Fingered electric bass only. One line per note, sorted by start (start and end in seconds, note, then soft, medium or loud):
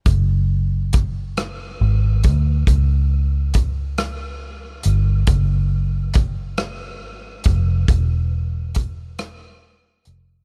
0.07 1.76 F#1 medium
1.81 2.27 G#1 medium
2.25 2.64 D2 medium
2.68 4.81 C#2 medium
4.86 5.24 G1 medium
5.28 7.03 F#1 medium
7.03 7.41 G#1 medium
7.46 7.85 F1 medium
7.89 10.02 E1 medium
10.07 10.44 F1 medium